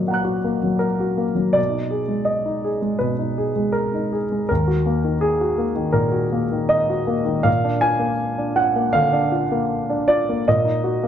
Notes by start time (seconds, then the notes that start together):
Already playing: A#2 F#3 A#3 F#4 D#5
0.07 A#3 F#5 A#5
0.14 F#6
0.25 F#4
0.44 A#3
0.63 F#3
0.79 A#4
1.00 F#4
1.18 A#3
1.35 F#3
1.53 B2 D5
1.70 D#4
1.91 G#4
2.08 G#3
2.25 D#5
2.46 D#4
2.64 G#4
2.82 G#3
2.99 B2 B4
3.19 D#4
3.38 G#4
3.56 G#3
3.72 A#4
3.94 D#4
4.12 G#4
4.32 G#3
4.49 D#2 A#4
4.67 F#4
4.86 A#3
5.04 D#3
5.21 G#4
5.41 F#4
5.58 A#3
5.75 D#3
5.92 A#2 A#4
6.12 F#4
6.32 A#3
6.52 D#3
6.69 D#5
6.90 F#4
7.07 A#3
7.25 D#3
7.43 A#2 F5
7.64 D4
7.81 F4 G#5
7.99 A#3
8.38 D4
8.56 F4 F#5
8.76 A#3
8.93 D3 F5
9.12 D4
9.32 F4
9.52 A#3
9.89 D4
10.08 F4 D5
10.29 A#3
10.48 A#2 D#5
10.65 D#4
10.84 F#4
11.03 A#3